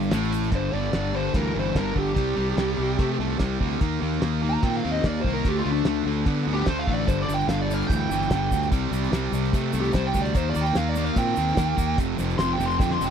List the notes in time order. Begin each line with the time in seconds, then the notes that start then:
Already playing: G2
0.03 shaker
0.11 A1 A2, snare, ride, shaker
0.24 shaker
0.32 ride, shaker
0.43 shaker
0.52 G1 G2 D3 C5, kick, closed hi-hat
0.72 G1 G2 D3 D5
0.84 snare
0.93 G1 G2 D3, snare, closed hi-hat
1.13 G2 D3 C5
1.34 D2 G2 E3 A#4, kick, closed hi-hat
1.56 G1 G2 E3
1.60 C5
1.75 G1 G2 D3 A#4, kick, snare, closed hi-hat
1.96 G1 G2 D3 G4, kick
2.07 snare
2.16 C2 C3 G3, kick, closed hi-hat
2.37 C2 C3 G3
2.57 C2 C3 G3, snare, closed hi-hat
2.77 C2 C3 G3
2.98 C3 A3, kick, closed hi-hat
3.19 C2 C3 A3
3.39 C2 C3 G3, kick, snare, closed hi-hat
3.61 D2 C3 G3, kick
3.81 D#2 D#3 A#3, kick, closed hi-hat
4.02 D#2 D#3 A#3
4.12 snare
4.22 D#2 D#3 A#3, snare, closed hi-hat
4.44 D#3 A#3
4.50 A#5
4.62 A#2 D#3 C4 G5, kick, closed hi-hat
4.77 F5
4.84 D#2 D#3 C4
4.92 D#5
5.04 D#2 D#3 A#3 D5, kick, snare, closed hi-hat
5.21 C2 C5, kick
5.26 D#3 A#3
5.34 A#4
5.45 D2 D3 A3 G4, kick, closed hi-hat
5.59 F4
5.66 D2 D3 A3
5.72 D4
5.76 snare
5.85 D2 D3 A3 D4, snare, closed hi-hat
6.05 D2 D3 A3
6.26 D3 B3, kick, closed hi-hat
6.37 snare
6.46 D2 D3 B3
6.54 G4
6.66 D2 D3 A3 C5, kick, snare, closed hi-hat
6.79 F5
6.87 A1 D3 A3, kick
6.94 D5
7.07 G1 G2 D3 C5, kick, closed hi-hat, shaker
7.22 D5
7.29 G1 G2 D3, shaker
7.34 G5
7.40 shaker
7.48 G1 G2 D3 F5, snare, closed hi-hat, shaker
7.61 D5
7.70 G2 D3, shaker
7.74 F5
7.82 shaker
7.87 D2 G2 E3 G5, kick, closed hi-hat
7.92 shaker
8.10 G1 G2 E3, shaker
8.22 shaker
8.31 G1 G2 D3, kick, snare, closed hi-hat, shaker
8.51 D2 G2 D3, kick, shaker
8.63 shaker
8.72 C2 C3 G3, kick, closed hi-hat, shaker
8.91 C2 C3 G3, shaker
9.03 snare, shaker
9.12 C2 C3 G3, snare, closed hi-hat, shaker
9.32 C2 C3 G3, shaker
9.45 shaker
9.53 C3 A3, kick, closed hi-hat, shaker
9.73 C2 C3 A3, shaker
9.80 G4, shaker
9.93 C2 C3 G3 C5, kick, snare, closed hi-hat, shaker
10.07 G5
10.14 D2 C3 G3, kick, shaker
10.22 D5, shaker
10.33 D#2 D#3 A#3 C5, kick, closed hi-hat, shaker
10.50 D5
10.55 D#2 D#3 A#3, shaker
10.61 G5
10.65 snare, shaker
10.75 D#2 D#3 A#3 F5, snare, closed hi-hat, shaker
10.89 D5
10.95 D#3 A#3, shaker
11.05 F5
11.16 A#2 D#3 C4 G5, kick, closed hi-hat, shaker
11.27 snare
11.36 D#2 D#3 C4, shaker
11.48 shaker
11.57 D#2 D#3 A#3, kick, snare, closed hi-hat, shaker
11.78 D#2 D#3 A#3, kick, shaker
11.98 F1 F2 C3, kick, closed hi-hat, shaker
12.19 F1 F2 C3, shaker
12.29 snare, shaker
12.38 F1 F2 C3 C6, snare, closed hi-hat, shaker
12.53 G5
12.60 F1 F2 C3, shaker
12.66 C6
12.71 shaker
12.78 F2 D3 G5, kick, snare, shaker
12.91 C6, snare
13.00 F1 F2 D3, shaker
13.04 G5